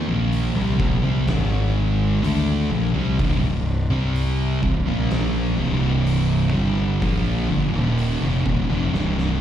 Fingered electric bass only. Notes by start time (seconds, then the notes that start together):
0.07 A#1
0.55 C2
0.79 A#1
1.03 C2
1.27 G#1
2.22 D2
2.70 A#1
2.94 C2
3.19 C1
3.41 C1
3.90 C2
4.63 C1
4.86 A#1
5.57 C1
6.52 G1
7.02 A#1
7.49 G1
7.73 D#1
8.21 F1
8.46 D#1
8.69 F1
8.93 C1